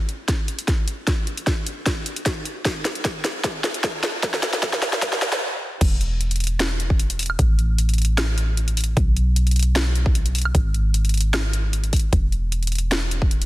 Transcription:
Already playing: 808-style bass E1
0.09 closed hi-hat
0.28 kick, snare, closed hi-hat
0.48 closed hi-hat
0.59 closed hi-hat
0.68 kick, snare, closed hi-hat
0.88 closed hi-hat
1.07 kick, snare, closed hi-hat
1.27 closed hi-hat
1.37 closed hi-hat
1.47 kick, snare, closed hi-hat
1.67 closed hi-hat
1.86 kick, snare, closed hi-hat
2.06 closed hi-hat
2.16 closed hi-hat
2.26 kick, snare, closed hi-hat
2.45 closed hi-hat
2.65 kick, snare, closed hi-hat
2.85 snare, closed hi-hat
2.95 closed hi-hat
3.05 kick, snare, closed hi-hat
3.24 snare, closed hi-hat
3.44 kick, snare, closed hi-hat
3.64 snare, closed hi-hat
3.74 closed hi-hat
3.84 kick, snare, closed hi-hat
4.03 snare, closed hi-hat
4.23 kick, snare, closed hi-hat
4.34 snare
4.43 snare, closed hi-hat
4.53 snare, closed hi-hat
4.63 kick, snare, closed hi-hat
4.73 snare
4.82 snare, closed hi-hat
4.93 snare
5.02 kick, snare, closed hi-hat
5.13 snare
5.22 snare, closed hi-hat
5.32 snare, closed hi-hat
5.81 808-style bass E1, kick, closed hi-hat, crash
6.01 closed hi-hat
6.21 closed hi-hat
6.31 closed hi-hat
6.36 closed hi-hat
6.40 closed hi-hat
6.44 closed hi-hat
6.47 closed hi-hat
6.60 snare, closed hi-hat
6.80 closed hi-hat
6.90 kick
7.00 closed hi-hat
7.10 closed hi-hat
7.19 closed hi-hat, open hi-hat
7.26 closed hi-hat, high woodblock
7.39 808-style bass A1, kick, closed hi-hat
7.59 closed hi-hat
7.78 closed hi-hat
7.89 closed hi-hat
7.94 closed hi-hat
7.98 closed hi-hat
8.02 closed hi-hat
8.05 closed hi-hat
8.18 snare, closed hi-hat, high woodblock
8.38 closed hi-hat
8.57 closed hi-hat
8.68 closed hi-hat
8.77 closed hi-hat, open hi-hat
8.84 closed hi-hat
8.97 808-style bass B1, kick, closed hi-hat
9.17 closed hi-hat
9.36 closed hi-hat
9.47 closed hi-hat
9.51 closed hi-hat
9.56 closed hi-hat
9.59 closed hi-hat
9.63 closed hi-hat
9.76 snare, closed hi-hat
9.95 closed hi-hat
10.06 kick
10.15 closed hi-hat
10.26 closed hi-hat
10.35 closed hi-hat, open hi-hat
10.42 closed hi-hat, high woodblock
10.55 808-style bass G#1, kick, closed hi-hat
10.74 closed hi-hat
10.94 closed hi-hat
11.05 closed hi-hat
11.09 closed hi-hat
11.14 closed hi-hat
11.17 closed hi-hat
11.21 closed hi-hat
11.34 snare, closed hi-hat, high woodblock
11.53 closed hi-hat
11.73 closed hi-hat
11.84 closed hi-hat
11.93 kick, closed hi-hat, open hi-hat
11.99 closed hi-hat
12.13 808-style bass E1, kick, closed hi-hat
12.32 closed hi-hat
12.52 closed hi-hat
12.63 closed hi-hat
12.67 closed hi-hat
12.72 closed hi-hat
12.75 closed hi-hat
12.78 closed hi-hat
12.92 snare, closed hi-hat
13.11 closed hi-hat
13.22 kick
13.31 closed hi-hat
13.42 closed hi-hat

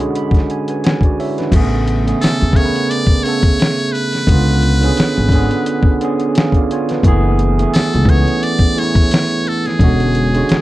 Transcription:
Already playing: tine electric piano D3 G#3 C#4 F#4 G#4 B5
0.00 closed hi-hat
0.15 tine electric piano B5, closed hi-hat
0.31 kick, closed hi-hat
0.37 snare
0.50 tine electric piano G#5, closed hi-hat
0.68 tine electric piano B4 G#5, closed hi-hat
0.84 tine electric piano F#5 G#5, snare, closed hi-hat
1.01 tine electric piano D5, kick, closed hi-hat
1.05 tine electric piano F#4
1.20 tine electric piano E4 C#5 E5, open hi-hat
1.38 tine electric piano D4 B4, snare, closed hi-hat
1.52 upright bass A1, tine electric piano C#3 A3 B3, kick, closed hi-hat, crash
1.56 tine electric piano G#4
1.88 closed hi-hat
2.05 tine electric piano C#3 A3 B3 G#4, closed hi-hat
2.22 muted trumpet A4, muted upright bass stroke, snare, closed hi-hat
2.41 upright bass E2, closed hi-hat
2.53 tine electric piano C#3 A3, muted trumpet C#5, kick, closed hi-hat
2.57 tine electric piano B3 A#4
2.65 tine electric piano B4
2.76 closed hi-hat
2.90 muted trumpet D5, closed hi-hat
3.07 kick
3.23 tine electric piano C#3 A3 B3, muted trumpet C#5, closed hi-hat
3.28 tine electric piano A4
3.43 kick, closed hi-hat
3.60 snare, closed hi-hat
3.79 closed hi-hat
3.92 muted trumpet B4, closed hi-hat
4.13 snare, closed hi-hat
4.27 upright bass C#2, tine electric piano D3 B3 C#4, kick, closed hi-hat
4.31 tine electric piano F4
4.62 closed hi-hat
4.81 tine electric piano D3 B3 C#4, closed hi-hat
4.85 tine electric piano G#4
4.97 muted upright bass stroke, snare, closed hi-hat
5.17 upright bass G#1, closed hi-hat
5.29 tine electric piano D3 B3, kick, closed hi-hat
5.34 tine electric piano C#4 G#4
5.51 closed hi-hat
5.66 closed hi-hat
5.83 kick
6.00 tine electric piano D3 B3 C#4, closed hi-hat
6.04 tine electric piano G#4
6.20 closed hi-hat
6.35 tine electric piano G#4 F5, snare, closed hi-hat
6.52 kick, closed hi-hat
6.57 tine electric piano F4 D5
6.71 tine electric piano F4 C#5 G#5, closed hi-hat
6.89 tine electric piano D4 B4, snare, closed hi-hat
7.03 upright bass F#1, tine electric piano E3 A3 B3, kick, closed hi-hat
7.08 tine electric piano G#4
7.39 closed hi-hat
7.58 tine electric piano E3 A3 B3, closed hi-hat
7.62 tine electric piano G#4
7.74 muted trumpet A4, muted upright bass stroke, snare, closed hi-hat
7.93 upright bass C#2, closed hi-hat
8.05 tine electric piano E3, kick, closed hi-hat
8.09 tine electric piano A3 B3 C#4, muted trumpet C#5
8.28 closed hi-hat
8.43 muted trumpet D5, closed hi-hat
8.59 kick
8.76 tine electric piano E3 A3 B3, muted trumpet C#5, closed hi-hat
8.80 tine electric piano E4
8.95 kick, closed hi-hat
9.11 snare, closed hi-hat
9.31 closed hi-hat
9.47 muted trumpet A4, closed hi-hat
9.65 muted trumpet G#4, snare, closed hi-hat
9.79 upright bass E1, tine electric piano D3 G#3 C#4, kick, closed hi-hat
9.84 tine electric piano F#4
10.00 closed hi-hat
10.15 closed hi-hat
10.33 tine electric piano D3 G#3 C#4, closed hi-hat
10.37 tine electric piano F#4
10.49 muted upright bass stroke, snare, closed hi-hat

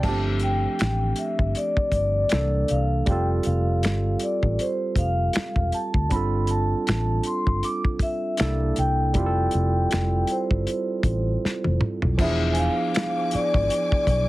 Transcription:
0.02 fingered electric bass G1, tine electric piano F3 A3 B3, vibraphone A5, kick, crash
0.06 tine electric piano D4 G4
0.11 tine electric piano C4
0.40 vibraphone G5, closed hi-hat
0.79 fingered electric bass A1, finger snap, snare, closed hi-hat
1.16 vibraphone E5, closed hi-hat
1.39 fingered electric bass G1, kick
1.55 vibraphone D5, closed hi-hat
1.77 muted fingered electric bass stroke, kick
1.92 fingered electric bass G1, vibraphone D5, kick, closed hi-hat
2.29 fingered electric bass C2, tine electric piano G3 A#3 D4, finger snap, snare, closed hi-hat
2.33 tine electric piano E3 A4
2.68 fingered electric bass C2, vibraphone F5, closed hi-hat
3.06 fingered electric bass F1, tine electric piano G3 C4 G4, vibraphone G5, kick, closed hi-hat
3.11 tine electric piano F4 A4
3.43 fingered electric bass F1, vibraphone F5, closed hi-hat
3.83 fingered electric bass G1, finger snap, snare, closed hi-hat
4.19 vibraphone D5, closed hi-hat
4.43 fingered electric bass A1, kick
4.59 vibraphone C5, closed hi-hat
4.96 fingered electric bass F1, vibraphone F5, kick, closed hi-hat
5.33 finger snap, muted fingered electric bass stroke, snare, closed hi-hat
5.56 fingered electric bass E1, kick
5.72 vibraphone A5, closed hi-hat
5.94 fingered electric bass D2, kick
6.09 fingered electric bass G1, tine electric piano G3 C4 D4, vibraphone B5, kick, closed hi-hat
6.14 tine electric piano F4 A4
6.47 vibraphone A5, closed hi-hat
6.87 fingered electric bass A1, finger snap, snare, closed hi-hat
7.23 vibraphone C6, closed hi-hat
7.47 fingered electric bass G1, kick
7.63 vibraphone D6, closed hi-hat
7.85 kick
7.99 vibraphone E5, kick, closed hi-hat
8.37 fingered electric bass C2, tine electric piano G3 A#3 D4 E4, finger snap, snare, closed hi-hat
8.42 tine electric piano A4
8.76 fingered electric bass C2, vibraphone G5, closed hi-hat
9.14 fingered electric bass F1, tine electric piano G3 C4 E4, kick, closed hi-hat
9.18 tine electric piano F4 G4
9.26 tine electric piano A4
9.51 fingered electric bass F1, closed hi-hat
9.91 fingered electric bass F1, finger snap, snare, closed hi-hat
10.27 closed hi-hat
10.31 vibraphone C5
10.51 fingered electric bass G1, kick
10.67 closed hi-hat
11.03 fingered electric bass A1, kick, closed hi-hat
11.45 muted fingered electric bass stroke, snare
11.64 fingered electric bass F1, high tom
11.81 mid tom
12.02 fingered electric bass B1, floor tom
12.18 fingered electric bass E1, tine electric piano F3 B3 D4, string section F3 G#5 D6, vibraphone E5, kick, crash
12.22 tine electric piano E4 G#4
12.53 vibraphone G#5, closed hi-hat
12.59 vibraphone F5
12.94 finger snap, snare, closed hi-hat
13.31 vibraphone D5, muted fingered electric bass stroke, closed hi-hat
13.54 fingered electric bass G#1, vibraphone D5, kick
13.70 closed hi-hat
13.92 kick
14.07 fingered electric bass B1, kick, closed hi-hat

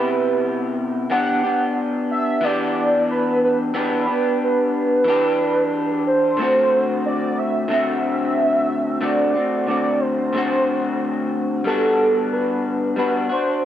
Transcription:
Already playing: clean electric guitar C3 B3 E4 G4, soft synth lead B4
1.10 clean electric guitar E3 B3 D4 G4, soft synth lead F#5
1.44 clean electric guitar B3 D4 G4
2.11 soft synth lead E5
2.41 clean electric guitar E3 B3 D4, soft synth lead D5
2.46 clean electric guitar G4
3.11 soft synth lead B4
3.44 soft synth lead B4
3.74 clean electric guitar E3 B3 D4 G4, soft synth lead B4
4.07 clean electric guitar B3 D4 G4
4.44 soft synth lead B4
5.04 clean electric guitar E3 D4
5.09 clean electric guitar G4
6.07 soft synth lead C5
6.37 clean electric guitar D3 A3 C4
6.42 clean electric guitar F#4
7.06 soft synth lead D5
7.38 soft synth lead E5
7.68 clean electric guitar D3 A3 C4, soft synth lead E5
7.73 clean electric guitar F#4
9.01 clean electric guitar D3 A3 C4 F#4, soft synth lead D5
9.34 clean electric guitar A3 C4 F#4
9.67 clean electric guitar D3 A3 C4 F#4, soft synth lead D5
10.00 soft synth lead C5
10.33 clean electric guitar D3 A3 C4
10.37 clean electric guitar F#4
11.64 clean electric guitar G3 B3 D4, soft synth lead A4
11.69 clean electric guitar F#4
12.32 soft synth lead B4
12.96 clean electric guitar G3 B3 D4 F#4, soft synth lead B4
13.29 clean electric guitar D4 F#4, soft synth lead C5

